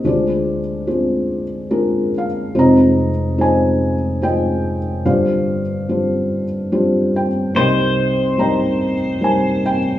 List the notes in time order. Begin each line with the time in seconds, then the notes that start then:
0.04 D2 D3 G#3 D4 F4 C5 D5
0.09 F4 G#4
0.87 G#3 D4 F4 C5
1.71 G#3 D4 F4 A#4
2.18 F5
2.55 F1 F2 G#3 D#4 F4 C5 A#5
2.60 D#5
3.38 G#3 D#4 F4 C5 G#5
3.43 D#5
4.22 G#3 D#4 F4 C5 D#5 G5
5.05 G1 G2 G3 D4 F4 C5 D5 F5
5.89 G3 D4 F4 C5
6.72 G3 D4 F4 C5
7.16 G5
7.54 C2 C3 G3 D#4 A#4 C5 C6
7.59 D#5 G5
8.38 G3 D#4 A#4 C5 D#5 G5 A#5
9.21 G3 D#4 A#4 C5 G#5
9.66 G5